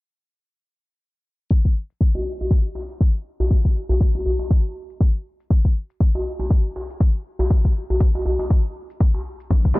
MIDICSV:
0, 0, Header, 1, 4, 480
1, 0, Start_track
1, 0, Tempo, 500000
1, 1447, Time_signature, 4, 2, 24, 8
1, 9403, End_track
2, 0, Start_track
2, 0, Title_t, "Synth stab"
2, 0, Program_c, 0, 62
2, 9364, Note_on_c, 0, 55, 80
2, 9364, Note_on_c, 0, 58, 74
2, 9364, Note_on_c, 0, 63, 73
2, 9364, Note_on_c, 0, 67, 86
2, 9403, Note_off_c, 0, 55, 0
2, 9403, Note_off_c, 0, 58, 0
2, 9403, Note_off_c, 0, 63, 0
2, 9403, Note_off_c, 0, 67, 0
2, 9403, End_track
3, 0, Start_track
3, 0, Title_t, "Djembe"
3, 2064, Note_on_c, 9, 63, 77
3, 2160, Note_off_c, 9, 63, 0
3, 2313, Note_on_c, 9, 63, 77
3, 2409, Note_off_c, 9, 63, 0
3, 2642, Note_on_c, 9, 62, 70
3, 2738, Note_off_c, 9, 62, 0
3, 3265, Note_on_c, 9, 64, 82
3, 3268, Note_on_c, 9, 62, 88
3, 3361, Note_off_c, 9, 64, 0
3, 3364, Note_off_c, 9, 62, 0
3, 3738, Note_on_c, 9, 64, 90
3, 3834, Note_off_c, 9, 64, 0
3, 3985, Note_on_c, 9, 63, 79
3, 4081, Note_off_c, 9, 63, 0
3, 4088, Note_on_c, 9, 64, 73
3, 4184, Note_off_c, 9, 64, 0
3, 4215, Note_on_c, 9, 63, 73
3, 4311, Note_off_c, 9, 63, 0
3, 5905, Note_on_c, 9, 63, 77
3, 6001, Note_off_c, 9, 63, 0
3, 6140, Note_on_c, 9, 63, 72
3, 6236, Note_off_c, 9, 63, 0
3, 6489, Note_on_c, 9, 62, 69
3, 6585, Note_off_c, 9, 62, 0
3, 7097, Note_on_c, 9, 64, 81
3, 7102, Note_on_c, 9, 62, 78
3, 7193, Note_off_c, 9, 64, 0
3, 7198, Note_off_c, 9, 62, 0
3, 7586, Note_on_c, 9, 64, 76
3, 7682, Note_off_c, 9, 64, 0
3, 7824, Note_on_c, 9, 63, 80
3, 7920, Note_off_c, 9, 63, 0
3, 7926, Note_on_c, 9, 64, 78
3, 8022, Note_off_c, 9, 64, 0
3, 8057, Note_on_c, 9, 63, 73
3, 8153, Note_off_c, 9, 63, 0
3, 8777, Note_on_c, 9, 63, 61
3, 8873, Note_off_c, 9, 63, 0
3, 9403, End_track
4, 0, Start_track
4, 0, Title_t, "Drums"
4, 1446, Note_on_c, 9, 36, 104
4, 1446, Note_on_c, 9, 82, 53
4, 1542, Note_off_c, 9, 36, 0
4, 1542, Note_off_c, 9, 82, 0
4, 1586, Note_on_c, 9, 36, 53
4, 1586, Note_on_c, 9, 82, 34
4, 1682, Note_off_c, 9, 36, 0
4, 1682, Note_off_c, 9, 82, 0
4, 1822, Note_on_c, 9, 82, 70
4, 1918, Note_off_c, 9, 82, 0
4, 1924, Note_on_c, 9, 82, 61
4, 1926, Note_on_c, 9, 36, 101
4, 2020, Note_off_c, 9, 82, 0
4, 2022, Note_off_c, 9, 36, 0
4, 2065, Note_on_c, 9, 82, 35
4, 2161, Note_off_c, 9, 82, 0
4, 2302, Note_on_c, 9, 82, 69
4, 2398, Note_off_c, 9, 82, 0
4, 2403, Note_on_c, 9, 82, 57
4, 2406, Note_on_c, 9, 36, 106
4, 2499, Note_off_c, 9, 82, 0
4, 2502, Note_off_c, 9, 36, 0
4, 2543, Note_on_c, 9, 82, 35
4, 2639, Note_off_c, 9, 82, 0
4, 2782, Note_on_c, 9, 82, 68
4, 2878, Note_off_c, 9, 82, 0
4, 2884, Note_on_c, 9, 82, 57
4, 2886, Note_on_c, 9, 36, 111
4, 2980, Note_off_c, 9, 82, 0
4, 2982, Note_off_c, 9, 36, 0
4, 3024, Note_on_c, 9, 82, 35
4, 3120, Note_off_c, 9, 82, 0
4, 3265, Note_on_c, 9, 82, 72
4, 3361, Note_off_c, 9, 82, 0
4, 3366, Note_on_c, 9, 36, 102
4, 3367, Note_on_c, 9, 82, 54
4, 3462, Note_off_c, 9, 36, 0
4, 3463, Note_off_c, 9, 82, 0
4, 3503, Note_on_c, 9, 82, 36
4, 3505, Note_on_c, 9, 36, 55
4, 3599, Note_off_c, 9, 82, 0
4, 3601, Note_off_c, 9, 36, 0
4, 3743, Note_on_c, 9, 82, 70
4, 3839, Note_off_c, 9, 82, 0
4, 3842, Note_on_c, 9, 82, 61
4, 3845, Note_on_c, 9, 36, 107
4, 3938, Note_off_c, 9, 82, 0
4, 3941, Note_off_c, 9, 36, 0
4, 3984, Note_on_c, 9, 82, 37
4, 4080, Note_off_c, 9, 82, 0
4, 4225, Note_on_c, 9, 82, 76
4, 4321, Note_off_c, 9, 82, 0
4, 4325, Note_on_c, 9, 36, 109
4, 4325, Note_on_c, 9, 82, 61
4, 4421, Note_off_c, 9, 36, 0
4, 4421, Note_off_c, 9, 82, 0
4, 4464, Note_on_c, 9, 82, 37
4, 4560, Note_off_c, 9, 82, 0
4, 4703, Note_on_c, 9, 82, 75
4, 4799, Note_off_c, 9, 82, 0
4, 4803, Note_on_c, 9, 82, 58
4, 4805, Note_on_c, 9, 36, 109
4, 4899, Note_off_c, 9, 82, 0
4, 4901, Note_off_c, 9, 36, 0
4, 4942, Note_on_c, 9, 82, 35
4, 5038, Note_off_c, 9, 82, 0
4, 5184, Note_on_c, 9, 82, 76
4, 5280, Note_off_c, 9, 82, 0
4, 5285, Note_on_c, 9, 36, 111
4, 5286, Note_on_c, 9, 82, 59
4, 5381, Note_off_c, 9, 36, 0
4, 5382, Note_off_c, 9, 82, 0
4, 5423, Note_on_c, 9, 82, 39
4, 5424, Note_on_c, 9, 36, 58
4, 5519, Note_off_c, 9, 82, 0
4, 5520, Note_off_c, 9, 36, 0
4, 5662, Note_on_c, 9, 82, 73
4, 5758, Note_off_c, 9, 82, 0
4, 5763, Note_on_c, 9, 82, 61
4, 5764, Note_on_c, 9, 36, 113
4, 5859, Note_off_c, 9, 82, 0
4, 5860, Note_off_c, 9, 36, 0
4, 5901, Note_on_c, 9, 82, 37
4, 5997, Note_off_c, 9, 82, 0
4, 6142, Note_on_c, 9, 82, 78
4, 6238, Note_off_c, 9, 82, 0
4, 6243, Note_on_c, 9, 82, 62
4, 6245, Note_on_c, 9, 36, 117
4, 6339, Note_off_c, 9, 82, 0
4, 6341, Note_off_c, 9, 36, 0
4, 6384, Note_on_c, 9, 82, 36
4, 6480, Note_off_c, 9, 82, 0
4, 6625, Note_on_c, 9, 82, 74
4, 6721, Note_off_c, 9, 82, 0
4, 6725, Note_on_c, 9, 36, 113
4, 6725, Note_on_c, 9, 82, 58
4, 6821, Note_off_c, 9, 36, 0
4, 6821, Note_off_c, 9, 82, 0
4, 6862, Note_on_c, 9, 82, 35
4, 6958, Note_off_c, 9, 82, 0
4, 7102, Note_on_c, 9, 82, 78
4, 7198, Note_off_c, 9, 82, 0
4, 7202, Note_on_c, 9, 82, 57
4, 7204, Note_on_c, 9, 36, 113
4, 7298, Note_off_c, 9, 82, 0
4, 7300, Note_off_c, 9, 36, 0
4, 7344, Note_on_c, 9, 36, 56
4, 7344, Note_on_c, 9, 82, 36
4, 7440, Note_off_c, 9, 36, 0
4, 7440, Note_off_c, 9, 82, 0
4, 7584, Note_on_c, 9, 82, 70
4, 7680, Note_off_c, 9, 82, 0
4, 7684, Note_on_c, 9, 36, 111
4, 7685, Note_on_c, 9, 82, 61
4, 7780, Note_off_c, 9, 36, 0
4, 7781, Note_off_c, 9, 82, 0
4, 7825, Note_on_c, 9, 82, 36
4, 7921, Note_off_c, 9, 82, 0
4, 8063, Note_on_c, 9, 82, 77
4, 8159, Note_off_c, 9, 82, 0
4, 8163, Note_on_c, 9, 82, 60
4, 8164, Note_on_c, 9, 36, 108
4, 8259, Note_off_c, 9, 82, 0
4, 8260, Note_off_c, 9, 36, 0
4, 8301, Note_on_c, 9, 82, 38
4, 8397, Note_off_c, 9, 82, 0
4, 8542, Note_on_c, 9, 82, 73
4, 8638, Note_off_c, 9, 82, 0
4, 8642, Note_on_c, 9, 82, 60
4, 8645, Note_on_c, 9, 36, 112
4, 8738, Note_off_c, 9, 82, 0
4, 8741, Note_off_c, 9, 36, 0
4, 8783, Note_on_c, 9, 82, 35
4, 8879, Note_off_c, 9, 82, 0
4, 9023, Note_on_c, 9, 82, 74
4, 9119, Note_off_c, 9, 82, 0
4, 9125, Note_on_c, 9, 36, 102
4, 9125, Note_on_c, 9, 62, 44
4, 9125, Note_on_c, 9, 82, 56
4, 9221, Note_off_c, 9, 36, 0
4, 9221, Note_off_c, 9, 62, 0
4, 9221, Note_off_c, 9, 82, 0
4, 9264, Note_on_c, 9, 82, 36
4, 9265, Note_on_c, 9, 36, 55
4, 9360, Note_off_c, 9, 82, 0
4, 9361, Note_off_c, 9, 36, 0
4, 9403, End_track
0, 0, End_of_file